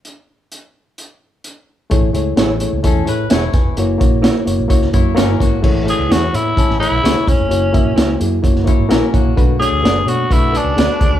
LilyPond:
<<
  \new Staff \with { instrumentName = "Clean electric guitar" } { \time 4/4 \key a \major \tempo 4 = 128 r1 | r4 <e' gis' cis''>16 r4. r16 <e' gis' cis''>16 r8. | r4 <e' ais' cis''>16 r4. r16 <e' ais' cis''>16 r8. | r4 <e' gis' cis''>16 r4. r16 <e' gis' cis''>16 r8. |
r4 <e' ais' cis''>16 r4. r16 <e' ais' cis''>16 r8. | r4 <fis' a' d''>16 r4. r16 <fis' a' d''>16 r8. | }
  \new Staff \with { instrumentName = "Clean electric guitar" } { \time 4/4 \key a \major r1 | r2 <cis' a'>8 b'8 <e' cis''>4 | r2 r8 <e' cis''>8 <cis' ais'>8 <ais fis'>8~ | <ais fis'>8 r4. <cis' a'>8 b'8 <e' cis''>4 |
r2 r8 <e' cis''>8 <cis' ais'>8 <ais fis'>8~ | <ais fis'>8 r4. <a fis'>8 <cis' a'>8 <d' b'>4 | }
  \new Staff \with { instrumentName = "Reed electric piano" } { \time 4/4 \key a \major << { r1 | r2. <gis' e''>8 <b' gis''>8~ | <b' gis''>8 r2. r8 | r1 |
r1 | r1 | } \\ { r1 | <a e' gis' cis''>8 <a e' gis' cis''>8 <a e' gis' cis''>8 <a e' gis' cis''>8 <a e' gis' cis''>8 <a e' gis' cis''>8 r4 | <ais e' fis' cis''>8 <ais e' fis' cis''>8 <ais e' fis' cis''>8 <ais e' fis' cis''>8 <ais e' fis' cis''>8 <ais e' fis' cis''>8 <ais e' fis' cis''>8 <ais e' fis' cis''>8 | <a e' gis' cis''>8 <a e' gis' cis''>8 <a e' gis'>8 <a e' gis' cis''>8 <a e' gis' cis''>8 <a e' gis' cis''>8 <a e' gis' cis''>8 <a e' gis' cis''>8 |
<ais e' fis' cis''>8 <ais e' fis' e''>8 <ais e' fis' cis''>8 <ais e' fis' gis'>8 <ais e' fis' cis''>8 <ais e' fis' cis''>8 <ais e' fis' ais'>8 <ais e' fis' cis''>8 | <a d' fis' b'>8 <a d' fis' cis''>8 <a d' fis' b'>8 <a d' fis' cis''>8 <a d' fis' b'>8 <a d' fis' b'>8 <a d' fis' gis'>8 <a d' fis' gis'>8 | } >> }
  \new Staff \with { instrumentName = "Tenor saxophone" } { \time 4/4 \key a \major r1 | r1 | r1 | r8 gis'8 fis'8 e'4 e'4 cis'8~ |
cis'4. r2 r8 | r8 gis'4 fis'8 e'8 d'4. | }
  \new Staff \with { instrumentName = "Fingered electric bass" } { \clef bass \time 4/4 \key a \major r1 | a,,8 cis,8 a,,8. cis,16 e,8 a,8 e,,8 f,,8 | fis,,8 ais,,8. r16 fis,,16 ais,,16 cis,8 fis,8 g,,8 gis,,8 | a,,8. cis,16 e,8 a,8 a,,8. b,,16 cis,16 r16 e,,16 f,,16 |
fis,,8. ais,,16 cis,8 fis,8 fis,,8. gis,,16 ais,,16 r16 a,,16 ais,,16 | b,,8. d,16 fis,,8 b,8 b,,8. cis,16 d,16 r16 d,16 dis,16 | }
  \new DrumStaff \with { instrumentName = "Drums" } \drummode { \time 4/4 hh4 hh4 hh4 hh4 | <hh bd>8 hh8 <hh sn>8 hh8 <hh bd>8 hh8 <hh sn>8 <hh bd sn>8 | hh8 <hh bd>8 <hh sn>8 hh8 <hh bd>16 sn16 <hh bd>8 <hh sn>8 <hh bd sn>8 | <cymc bd>8 hh8 <hh sn>8 hh8 <hh bd>16 sn16 hh8 <hh sn>8 <hh bd>8 |
hh8 <hh bd>8 <hh sn>8 hh8 <hh bd>16 sn16 <hh bd>8 <hh sn>8 <hh bd>8 | <hh bd>8 hh8 <hh sn>8 hh8 <hh bd>8 hh8 <hh sn>8 <hh bd sn>8 | }
>>